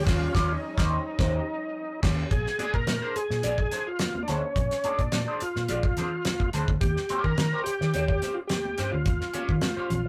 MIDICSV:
0, 0, Header, 1, 8, 480
1, 0, Start_track
1, 0, Tempo, 561798
1, 56, Time_signature, 4, 2, 24, 8
1, 8616, End_track
2, 0, Start_track
2, 0, Title_t, "Clean electric guitar"
2, 0, Program_c, 0, 27
2, 40, Note_on_c, 0, 61, 100
2, 47, Note_on_c, 0, 67, 108
2, 53, Note_on_c, 0, 73, 99
2, 212, Note_off_c, 0, 61, 0
2, 217, Note_off_c, 0, 67, 0
2, 220, Note_off_c, 0, 73, 0
2, 280, Note_on_c, 0, 61, 96
2, 291, Note_on_c, 0, 67, 98
2, 295, Note_on_c, 0, 73, 102
2, 452, Note_off_c, 0, 61, 0
2, 459, Note_off_c, 0, 67, 0
2, 461, Note_off_c, 0, 73, 0
2, 662, Note_on_c, 0, 61, 99
2, 665, Note_on_c, 0, 67, 105
2, 671, Note_on_c, 0, 72, 103
2, 823, Note_off_c, 0, 61, 0
2, 824, Note_off_c, 0, 67, 0
2, 828, Note_off_c, 0, 72, 0
2, 1013, Note_on_c, 0, 61, 111
2, 1022, Note_on_c, 0, 67, 106
2, 1024, Note_on_c, 0, 72, 100
2, 1179, Note_off_c, 0, 61, 0
2, 1184, Note_off_c, 0, 67, 0
2, 1186, Note_off_c, 0, 72, 0
2, 1730, Note_on_c, 0, 61, 119
2, 1739, Note_on_c, 0, 67, 113
2, 1743, Note_on_c, 0, 73, 102
2, 1898, Note_off_c, 0, 61, 0
2, 1903, Note_off_c, 0, 67, 0
2, 1905, Note_off_c, 0, 73, 0
2, 2213, Note_on_c, 0, 62, 70
2, 2221, Note_on_c, 0, 68, 91
2, 2221, Note_on_c, 0, 74, 92
2, 2338, Note_off_c, 0, 62, 0
2, 2342, Note_off_c, 0, 68, 0
2, 2342, Note_off_c, 0, 74, 0
2, 2581, Note_on_c, 0, 72, 92
2, 2585, Note_on_c, 0, 68, 74
2, 2591, Note_on_c, 0, 62, 75
2, 2686, Note_off_c, 0, 62, 0
2, 2692, Note_off_c, 0, 72, 0
2, 2693, Note_off_c, 0, 68, 0
2, 2928, Note_on_c, 0, 62, 81
2, 2936, Note_on_c, 0, 68, 90
2, 2938, Note_on_c, 0, 74, 94
2, 3053, Note_off_c, 0, 68, 0
2, 3055, Note_off_c, 0, 62, 0
2, 3056, Note_off_c, 0, 74, 0
2, 3171, Note_on_c, 0, 62, 63
2, 3179, Note_on_c, 0, 68, 67
2, 3182, Note_on_c, 0, 72, 71
2, 3270, Note_off_c, 0, 62, 0
2, 3274, Note_off_c, 0, 68, 0
2, 3275, Note_off_c, 0, 72, 0
2, 3656, Note_on_c, 0, 62, 82
2, 3664, Note_on_c, 0, 68, 92
2, 3669, Note_on_c, 0, 72, 101
2, 3775, Note_off_c, 0, 72, 0
2, 3779, Note_off_c, 0, 62, 0
2, 3780, Note_off_c, 0, 68, 0
2, 4140, Note_on_c, 0, 62, 77
2, 4147, Note_on_c, 0, 68, 85
2, 4152, Note_on_c, 0, 74, 75
2, 4262, Note_off_c, 0, 62, 0
2, 4265, Note_off_c, 0, 68, 0
2, 4267, Note_off_c, 0, 74, 0
2, 4509, Note_on_c, 0, 72, 82
2, 4513, Note_on_c, 0, 68, 74
2, 4519, Note_on_c, 0, 62, 64
2, 4616, Note_off_c, 0, 72, 0
2, 4618, Note_off_c, 0, 62, 0
2, 4618, Note_off_c, 0, 68, 0
2, 4859, Note_on_c, 0, 62, 80
2, 4863, Note_on_c, 0, 68, 88
2, 4872, Note_on_c, 0, 74, 90
2, 4982, Note_off_c, 0, 62, 0
2, 4983, Note_off_c, 0, 68, 0
2, 4988, Note_off_c, 0, 74, 0
2, 5106, Note_on_c, 0, 62, 66
2, 5111, Note_on_c, 0, 68, 70
2, 5116, Note_on_c, 0, 72, 72
2, 5198, Note_off_c, 0, 62, 0
2, 5201, Note_off_c, 0, 68, 0
2, 5203, Note_off_c, 0, 72, 0
2, 5586, Note_on_c, 0, 62, 95
2, 5594, Note_on_c, 0, 68, 106
2, 5595, Note_on_c, 0, 72, 102
2, 5705, Note_off_c, 0, 62, 0
2, 5709, Note_off_c, 0, 68, 0
2, 5710, Note_off_c, 0, 72, 0
2, 6068, Note_on_c, 0, 61, 93
2, 6074, Note_on_c, 0, 67, 100
2, 6080, Note_on_c, 0, 73, 96
2, 6236, Note_off_c, 0, 61, 0
2, 6239, Note_off_c, 0, 67, 0
2, 6242, Note_off_c, 0, 73, 0
2, 6431, Note_on_c, 0, 72, 86
2, 6441, Note_on_c, 0, 67, 88
2, 6443, Note_on_c, 0, 61, 71
2, 6531, Note_off_c, 0, 61, 0
2, 6536, Note_off_c, 0, 67, 0
2, 6538, Note_off_c, 0, 72, 0
2, 6780, Note_on_c, 0, 61, 78
2, 6787, Note_on_c, 0, 67, 97
2, 6793, Note_on_c, 0, 73, 95
2, 6903, Note_off_c, 0, 61, 0
2, 6907, Note_off_c, 0, 67, 0
2, 6907, Note_off_c, 0, 73, 0
2, 7021, Note_on_c, 0, 61, 65
2, 7030, Note_on_c, 0, 67, 62
2, 7033, Note_on_c, 0, 72, 60
2, 7117, Note_off_c, 0, 61, 0
2, 7121, Note_off_c, 0, 67, 0
2, 7122, Note_off_c, 0, 72, 0
2, 7502, Note_on_c, 0, 61, 101
2, 7507, Note_on_c, 0, 67, 111
2, 7514, Note_on_c, 0, 72, 123
2, 7616, Note_off_c, 0, 72, 0
2, 7621, Note_off_c, 0, 67, 0
2, 7624, Note_off_c, 0, 61, 0
2, 7975, Note_on_c, 0, 61, 90
2, 7982, Note_on_c, 0, 67, 89
2, 7988, Note_on_c, 0, 73, 103
2, 8101, Note_off_c, 0, 61, 0
2, 8105, Note_off_c, 0, 67, 0
2, 8108, Note_off_c, 0, 73, 0
2, 8344, Note_on_c, 0, 72, 70
2, 8349, Note_on_c, 0, 67, 63
2, 8353, Note_on_c, 0, 61, 73
2, 8451, Note_off_c, 0, 61, 0
2, 8456, Note_off_c, 0, 67, 0
2, 8456, Note_off_c, 0, 72, 0
2, 8616, End_track
3, 0, Start_track
3, 0, Title_t, "Tonewheel organ"
3, 0, Program_c, 1, 16
3, 80, Note_on_c, 1, 65, 91
3, 443, Note_on_c, 1, 63, 85
3, 445, Note_off_c, 1, 65, 0
3, 1710, Note_off_c, 1, 63, 0
3, 1977, Note_on_c, 1, 68, 98
3, 2342, Note_on_c, 1, 70, 114
3, 2354, Note_off_c, 1, 68, 0
3, 2700, Note_on_c, 1, 68, 100
3, 2705, Note_off_c, 1, 70, 0
3, 3306, Note_on_c, 1, 65, 93
3, 3322, Note_off_c, 1, 68, 0
3, 3609, Note_off_c, 1, 65, 0
3, 3612, Note_on_c, 1, 62, 66
3, 3661, Note_off_c, 1, 62, 0
3, 3667, Note_on_c, 1, 61, 95
3, 4271, Note_on_c, 1, 62, 93
3, 4286, Note_off_c, 1, 61, 0
3, 4381, Note_off_c, 1, 62, 0
3, 4391, Note_on_c, 1, 62, 82
3, 4630, Note_off_c, 1, 62, 0
3, 4632, Note_on_c, 1, 65, 92
3, 5550, Note_off_c, 1, 65, 0
3, 5816, Note_on_c, 1, 67, 99
3, 6182, Note_on_c, 1, 70, 127
3, 6194, Note_off_c, 1, 67, 0
3, 6511, Note_off_c, 1, 70, 0
3, 6525, Note_on_c, 1, 67, 127
3, 7125, Note_on_c, 1, 65, 76
3, 7157, Note_off_c, 1, 67, 0
3, 7180, Note_off_c, 1, 65, 0
3, 7240, Note_on_c, 1, 67, 97
3, 7615, Note_on_c, 1, 65, 76
3, 7628, Note_off_c, 1, 67, 0
3, 8616, Note_off_c, 1, 65, 0
3, 8616, End_track
4, 0, Start_track
4, 0, Title_t, "String section"
4, 0, Program_c, 2, 48
4, 0, Note_on_c, 2, 53, 90
4, 0, Note_on_c, 2, 55, 86
4, 0, Note_on_c, 2, 60, 103
4, 0, Note_on_c, 2, 61, 103
4, 1937, Note_off_c, 2, 60, 0
4, 1938, Note_off_c, 2, 61, 0
4, 1939, Note_off_c, 2, 55, 0
4, 1941, Note_off_c, 2, 53, 0
4, 8616, End_track
5, 0, Start_track
5, 0, Title_t, "Fingered electric bass"
5, 0, Program_c, 3, 33
5, 58, Note_on_c, 3, 39, 105
5, 223, Note_off_c, 3, 39, 0
5, 298, Note_on_c, 3, 39, 99
5, 462, Note_off_c, 3, 39, 0
5, 666, Note_on_c, 3, 39, 97
5, 825, Note_off_c, 3, 39, 0
5, 1019, Note_on_c, 3, 39, 94
5, 1182, Note_off_c, 3, 39, 0
5, 1735, Note_on_c, 3, 39, 99
5, 1900, Note_off_c, 3, 39, 0
5, 1976, Note_on_c, 3, 34, 113
5, 2084, Note_off_c, 3, 34, 0
5, 2340, Note_on_c, 3, 46, 87
5, 2437, Note_off_c, 3, 46, 0
5, 2461, Note_on_c, 3, 46, 96
5, 2567, Note_off_c, 3, 46, 0
5, 2822, Note_on_c, 3, 46, 91
5, 2918, Note_off_c, 3, 46, 0
5, 2937, Note_on_c, 3, 34, 90
5, 3141, Note_off_c, 3, 34, 0
5, 3663, Note_on_c, 3, 38, 86
5, 3768, Note_off_c, 3, 38, 0
5, 3895, Note_on_c, 3, 34, 114
5, 4003, Note_off_c, 3, 34, 0
5, 4265, Note_on_c, 3, 46, 92
5, 4360, Note_off_c, 3, 46, 0
5, 4381, Note_on_c, 3, 46, 104
5, 4487, Note_off_c, 3, 46, 0
5, 4751, Note_on_c, 3, 46, 99
5, 4863, Note_on_c, 3, 34, 97
5, 4876, Note_off_c, 3, 46, 0
5, 5065, Note_off_c, 3, 34, 0
5, 5588, Note_on_c, 3, 38, 98
5, 5692, Note_off_c, 3, 38, 0
5, 5710, Note_on_c, 3, 38, 96
5, 5804, Note_off_c, 3, 38, 0
5, 5826, Note_on_c, 3, 39, 105
5, 5930, Note_off_c, 3, 39, 0
5, 6189, Note_on_c, 3, 51, 97
5, 6283, Note_off_c, 3, 51, 0
5, 6306, Note_on_c, 3, 51, 105
5, 6411, Note_off_c, 3, 51, 0
5, 6672, Note_on_c, 3, 51, 98
5, 6765, Note_off_c, 3, 51, 0
5, 6789, Note_on_c, 3, 39, 85
5, 6989, Note_off_c, 3, 39, 0
5, 7505, Note_on_c, 3, 43, 83
5, 7611, Note_off_c, 3, 43, 0
5, 7633, Note_on_c, 3, 38, 85
5, 7741, Note_off_c, 3, 38, 0
5, 7741, Note_on_c, 3, 39, 115
5, 7849, Note_off_c, 3, 39, 0
5, 8111, Note_on_c, 3, 51, 90
5, 8205, Note_off_c, 3, 51, 0
5, 8459, Note_on_c, 3, 34, 93
5, 8616, Note_off_c, 3, 34, 0
5, 8616, End_track
6, 0, Start_track
6, 0, Title_t, "Muted clean electric guitar strokes"
6, 2458, Note_on_c, 9, 29, 35
6, 2543, Note_off_c, 9, 29, 0
6, 2696, Note_on_c, 9, 29, 36
6, 2782, Note_off_c, 9, 29, 0
6, 2823, Note_on_c, 9, 29, 49
6, 2909, Note_off_c, 9, 29, 0
6, 3059, Note_on_c, 9, 29, 52
6, 3145, Note_off_c, 9, 29, 0
6, 3306, Note_on_c, 9, 29, 45
6, 3392, Note_off_c, 9, 29, 0
6, 3540, Note_on_c, 9, 29, 44
6, 3625, Note_off_c, 9, 29, 0
6, 3785, Note_on_c, 9, 29, 44
6, 3871, Note_off_c, 9, 29, 0
6, 4385, Note_on_c, 9, 29, 52
6, 4471, Note_off_c, 9, 29, 0
6, 4628, Note_on_c, 9, 29, 45
6, 4713, Note_off_c, 9, 29, 0
6, 4755, Note_on_c, 9, 29, 37
6, 4840, Note_off_c, 9, 29, 0
6, 4993, Note_on_c, 9, 29, 45
6, 5078, Note_off_c, 9, 29, 0
6, 5231, Note_on_c, 9, 29, 47
6, 5317, Note_off_c, 9, 29, 0
6, 5469, Note_on_c, 9, 29, 40
6, 5554, Note_off_c, 9, 29, 0
6, 5728, Note_on_c, 9, 29, 42
6, 5813, Note_off_c, 9, 29, 0
6, 6310, Note_on_c, 9, 29, 49
6, 6395, Note_off_c, 9, 29, 0
6, 6542, Note_on_c, 9, 29, 38
6, 6627, Note_off_c, 9, 29, 0
6, 6671, Note_on_c, 9, 29, 52
6, 6756, Note_off_c, 9, 29, 0
6, 6911, Note_on_c, 9, 29, 46
6, 6996, Note_off_c, 9, 29, 0
6, 7149, Note_on_c, 9, 29, 48
6, 7234, Note_off_c, 9, 29, 0
6, 7392, Note_on_c, 9, 29, 37
6, 7477, Note_off_c, 9, 29, 0
6, 7626, Note_on_c, 9, 29, 51
6, 7712, Note_off_c, 9, 29, 0
6, 8222, Note_on_c, 9, 29, 45
6, 8307, Note_off_c, 9, 29, 0
6, 8462, Note_on_c, 9, 29, 38
6, 8547, Note_off_c, 9, 29, 0
6, 8616, End_track
7, 0, Start_track
7, 0, Title_t, "Muted fingered electric bass strokes"
7, 2217, Note_on_c, 9, 29, 47
7, 2302, Note_off_c, 9, 29, 0
7, 2699, Note_on_c, 9, 29, 45
7, 2784, Note_off_c, 9, 29, 0
7, 3549, Note_on_c, 9, 29, 40
7, 3635, Note_off_c, 9, 29, 0
7, 4142, Note_on_c, 9, 29, 43
7, 4227, Note_off_c, 9, 29, 0
7, 4628, Note_on_c, 9, 29, 50
7, 4713, Note_off_c, 9, 29, 0
7, 6070, Note_on_c, 9, 29, 46
7, 6155, Note_off_c, 9, 29, 0
7, 6549, Note_on_c, 9, 29, 49
7, 6635, Note_off_c, 9, 29, 0
7, 7982, Note_on_c, 9, 29, 48
7, 8068, Note_off_c, 9, 29, 0
7, 8348, Note_on_c, 9, 29, 40
7, 8434, Note_off_c, 9, 29, 0
7, 8616, End_track
8, 0, Start_track
8, 0, Title_t, "Drums"
8, 57, Note_on_c, 9, 36, 122
8, 58, Note_on_c, 9, 49, 81
8, 60, Note_on_c, 9, 38, 116
8, 143, Note_off_c, 9, 36, 0
8, 143, Note_off_c, 9, 49, 0
8, 146, Note_off_c, 9, 38, 0
8, 296, Note_on_c, 9, 36, 101
8, 299, Note_on_c, 9, 38, 101
8, 382, Note_off_c, 9, 36, 0
8, 385, Note_off_c, 9, 38, 0
8, 663, Note_on_c, 9, 36, 104
8, 667, Note_on_c, 9, 38, 99
8, 748, Note_off_c, 9, 36, 0
8, 753, Note_off_c, 9, 38, 0
8, 1015, Note_on_c, 9, 36, 100
8, 1018, Note_on_c, 9, 38, 90
8, 1100, Note_off_c, 9, 36, 0
8, 1104, Note_off_c, 9, 38, 0
8, 1734, Note_on_c, 9, 36, 105
8, 1736, Note_on_c, 9, 49, 77
8, 1738, Note_on_c, 9, 38, 96
8, 1820, Note_off_c, 9, 36, 0
8, 1821, Note_off_c, 9, 49, 0
8, 1824, Note_off_c, 9, 38, 0
8, 1974, Note_on_c, 9, 36, 108
8, 1976, Note_on_c, 9, 42, 82
8, 1982, Note_on_c, 9, 62, 53
8, 2060, Note_off_c, 9, 36, 0
8, 2061, Note_off_c, 9, 42, 0
8, 2067, Note_off_c, 9, 62, 0
8, 2106, Note_on_c, 9, 38, 35
8, 2192, Note_off_c, 9, 38, 0
8, 2211, Note_on_c, 9, 62, 46
8, 2214, Note_on_c, 9, 42, 71
8, 2296, Note_off_c, 9, 62, 0
8, 2300, Note_off_c, 9, 42, 0
8, 2339, Note_on_c, 9, 36, 72
8, 2425, Note_off_c, 9, 36, 0
8, 2452, Note_on_c, 9, 63, 84
8, 2453, Note_on_c, 9, 42, 85
8, 2456, Note_on_c, 9, 38, 122
8, 2537, Note_off_c, 9, 63, 0
8, 2539, Note_off_c, 9, 42, 0
8, 2541, Note_off_c, 9, 38, 0
8, 2698, Note_on_c, 9, 42, 61
8, 2783, Note_off_c, 9, 42, 0
8, 2825, Note_on_c, 9, 38, 40
8, 2910, Note_off_c, 9, 38, 0
8, 2933, Note_on_c, 9, 42, 85
8, 2937, Note_on_c, 9, 62, 60
8, 3018, Note_off_c, 9, 42, 0
8, 3023, Note_off_c, 9, 62, 0
8, 3059, Note_on_c, 9, 36, 89
8, 3144, Note_off_c, 9, 36, 0
8, 3174, Note_on_c, 9, 42, 66
8, 3175, Note_on_c, 9, 38, 38
8, 3260, Note_off_c, 9, 38, 0
8, 3260, Note_off_c, 9, 42, 0
8, 3409, Note_on_c, 9, 42, 79
8, 3413, Note_on_c, 9, 38, 112
8, 3418, Note_on_c, 9, 63, 72
8, 3495, Note_off_c, 9, 42, 0
8, 3499, Note_off_c, 9, 38, 0
8, 3503, Note_off_c, 9, 63, 0
8, 3546, Note_on_c, 9, 63, 86
8, 3631, Note_off_c, 9, 63, 0
8, 3655, Note_on_c, 9, 42, 74
8, 3657, Note_on_c, 9, 38, 36
8, 3740, Note_off_c, 9, 42, 0
8, 3743, Note_off_c, 9, 38, 0
8, 3895, Note_on_c, 9, 36, 108
8, 3896, Note_on_c, 9, 42, 83
8, 3902, Note_on_c, 9, 62, 58
8, 3980, Note_off_c, 9, 36, 0
8, 3981, Note_off_c, 9, 42, 0
8, 3987, Note_off_c, 9, 62, 0
8, 4026, Note_on_c, 9, 42, 54
8, 4027, Note_on_c, 9, 38, 37
8, 4111, Note_off_c, 9, 42, 0
8, 4112, Note_off_c, 9, 38, 0
8, 4133, Note_on_c, 9, 42, 71
8, 4136, Note_on_c, 9, 62, 44
8, 4219, Note_off_c, 9, 42, 0
8, 4221, Note_off_c, 9, 62, 0
8, 4261, Note_on_c, 9, 36, 72
8, 4264, Note_on_c, 9, 42, 53
8, 4346, Note_off_c, 9, 36, 0
8, 4350, Note_off_c, 9, 42, 0
8, 4374, Note_on_c, 9, 42, 88
8, 4376, Note_on_c, 9, 38, 127
8, 4376, Note_on_c, 9, 63, 79
8, 4459, Note_off_c, 9, 42, 0
8, 4462, Note_off_c, 9, 38, 0
8, 4462, Note_off_c, 9, 63, 0
8, 4617, Note_on_c, 9, 42, 66
8, 4703, Note_off_c, 9, 42, 0
8, 4748, Note_on_c, 9, 38, 40
8, 4833, Note_off_c, 9, 38, 0
8, 4857, Note_on_c, 9, 42, 79
8, 4857, Note_on_c, 9, 62, 53
8, 4942, Note_off_c, 9, 62, 0
8, 4943, Note_off_c, 9, 42, 0
8, 4983, Note_on_c, 9, 36, 101
8, 5069, Note_off_c, 9, 36, 0
8, 5099, Note_on_c, 9, 38, 39
8, 5099, Note_on_c, 9, 42, 69
8, 5101, Note_on_c, 9, 62, 37
8, 5101, Note_on_c, 9, 64, 79
8, 5184, Note_off_c, 9, 38, 0
8, 5184, Note_off_c, 9, 42, 0
8, 5187, Note_off_c, 9, 62, 0
8, 5187, Note_off_c, 9, 64, 0
8, 5338, Note_on_c, 9, 42, 95
8, 5341, Note_on_c, 9, 63, 74
8, 5343, Note_on_c, 9, 38, 106
8, 5424, Note_off_c, 9, 42, 0
8, 5426, Note_off_c, 9, 63, 0
8, 5428, Note_off_c, 9, 38, 0
8, 5464, Note_on_c, 9, 63, 78
8, 5468, Note_on_c, 9, 36, 84
8, 5550, Note_off_c, 9, 63, 0
8, 5553, Note_off_c, 9, 36, 0
8, 5581, Note_on_c, 9, 42, 75
8, 5583, Note_on_c, 9, 38, 38
8, 5666, Note_off_c, 9, 42, 0
8, 5668, Note_off_c, 9, 38, 0
8, 5708, Note_on_c, 9, 36, 91
8, 5793, Note_off_c, 9, 36, 0
8, 5820, Note_on_c, 9, 42, 80
8, 5821, Note_on_c, 9, 36, 115
8, 5827, Note_on_c, 9, 62, 54
8, 5905, Note_off_c, 9, 42, 0
8, 5906, Note_off_c, 9, 36, 0
8, 5913, Note_off_c, 9, 62, 0
8, 5951, Note_on_c, 9, 38, 34
8, 6037, Note_off_c, 9, 38, 0
8, 6059, Note_on_c, 9, 42, 73
8, 6066, Note_on_c, 9, 62, 46
8, 6145, Note_off_c, 9, 42, 0
8, 6151, Note_off_c, 9, 62, 0
8, 6188, Note_on_c, 9, 36, 71
8, 6273, Note_off_c, 9, 36, 0
8, 6303, Note_on_c, 9, 42, 86
8, 6305, Note_on_c, 9, 38, 118
8, 6306, Note_on_c, 9, 63, 78
8, 6388, Note_off_c, 9, 42, 0
8, 6390, Note_off_c, 9, 38, 0
8, 6391, Note_off_c, 9, 63, 0
8, 6544, Note_on_c, 9, 42, 68
8, 6630, Note_off_c, 9, 42, 0
8, 6674, Note_on_c, 9, 38, 36
8, 6759, Note_off_c, 9, 38, 0
8, 6781, Note_on_c, 9, 42, 85
8, 6789, Note_on_c, 9, 62, 54
8, 6866, Note_off_c, 9, 42, 0
8, 6875, Note_off_c, 9, 62, 0
8, 6907, Note_on_c, 9, 36, 97
8, 6993, Note_off_c, 9, 36, 0
8, 7023, Note_on_c, 9, 38, 39
8, 7023, Note_on_c, 9, 42, 70
8, 7029, Note_on_c, 9, 62, 37
8, 7108, Note_off_c, 9, 42, 0
8, 7109, Note_off_c, 9, 38, 0
8, 7114, Note_off_c, 9, 62, 0
8, 7258, Note_on_c, 9, 42, 87
8, 7262, Note_on_c, 9, 38, 102
8, 7269, Note_on_c, 9, 63, 71
8, 7343, Note_off_c, 9, 42, 0
8, 7347, Note_off_c, 9, 38, 0
8, 7355, Note_off_c, 9, 63, 0
8, 7391, Note_on_c, 9, 63, 79
8, 7477, Note_off_c, 9, 63, 0
8, 7499, Note_on_c, 9, 42, 75
8, 7501, Note_on_c, 9, 38, 34
8, 7584, Note_off_c, 9, 42, 0
8, 7586, Note_off_c, 9, 38, 0
8, 7737, Note_on_c, 9, 42, 76
8, 7739, Note_on_c, 9, 36, 113
8, 7754, Note_on_c, 9, 62, 54
8, 7823, Note_off_c, 9, 42, 0
8, 7825, Note_off_c, 9, 36, 0
8, 7840, Note_off_c, 9, 62, 0
8, 7868, Note_on_c, 9, 38, 37
8, 7954, Note_off_c, 9, 38, 0
8, 7976, Note_on_c, 9, 42, 63
8, 7986, Note_on_c, 9, 62, 45
8, 8062, Note_off_c, 9, 42, 0
8, 8072, Note_off_c, 9, 62, 0
8, 8106, Note_on_c, 9, 36, 68
8, 8191, Note_off_c, 9, 36, 0
8, 8214, Note_on_c, 9, 42, 80
8, 8217, Note_on_c, 9, 38, 114
8, 8227, Note_on_c, 9, 63, 81
8, 8300, Note_off_c, 9, 42, 0
8, 8302, Note_off_c, 9, 38, 0
8, 8312, Note_off_c, 9, 63, 0
8, 8461, Note_on_c, 9, 42, 56
8, 8464, Note_on_c, 9, 64, 86
8, 8546, Note_off_c, 9, 42, 0
8, 8549, Note_off_c, 9, 64, 0
8, 8616, End_track
0, 0, End_of_file